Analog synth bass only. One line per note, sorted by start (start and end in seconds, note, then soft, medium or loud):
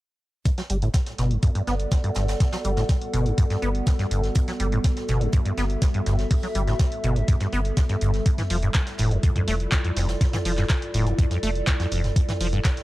0.70 0.89 G1 loud
1.18 1.37 G1 medium
1.67 1.86 G1 medium
2.16 2.35 G1 loud
2.65 2.84 G1 loud
3.14 3.33 G1 loud
3.62 3.81 G1 medium
4.11 4.30 G1 loud
4.60 4.79 G1 loud
5.09 5.28 G1 medium
5.58 5.77 G1 medium
6.06 6.25 G1 loud
6.55 6.74 G1 loud
7.04 7.23 G1 loud
7.53 7.72 G1 medium
8.01 8.20 G1 loud
8.50 8.69 F1 loud
8.99 9.18 F1 loud
9.48 9.67 F1 medium
9.96 10.15 F1 loud
10.45 10.64 F1 loud
10.94 11.13 F1 loud
11.43 11.62 F1 medium
11.92 12.11 F1 loud
12.40 12.59 F1 loud